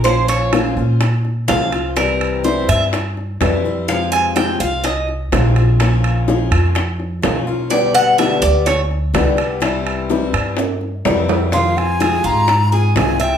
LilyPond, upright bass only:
\new Staff \with { instrumentName = "Upright bass" } { \clef bass \time 4/4 \key f \minor \tempo 4 = 126 bes,,4. bes,4. c,4~ | c,4. g,4. f,4~ | f,4. c,4. bes,,4~ | bes,,4. f,4. b,,4~ |
b,,4. d,4. c,4~ | c,4. g,4. f,4~ | f,4. aes,4. c,4 | }